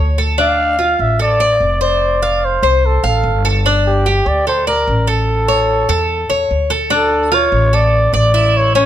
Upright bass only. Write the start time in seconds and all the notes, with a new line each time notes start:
Already playing: D2
0.99 A1
1.60 F1
2.63 C2
3.03 A1
3.23 G1
4.26 D2
4.87 A1
5.89 E2
6.30 E2
6.51 D2
7.52 A1
8.13 A1